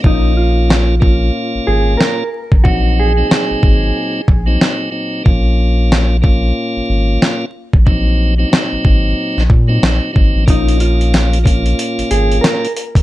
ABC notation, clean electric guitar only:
X:1
M:4/4
L:1/16
Q:"Swing 16ths" 1/4=92
K:Bbm
V:1 name="Clean electric guitar"
E2 F8 A2 B2 z2 | G2 A6- A z6 z | z16 | z16 |
E2 F8 A2 B2 z2 |]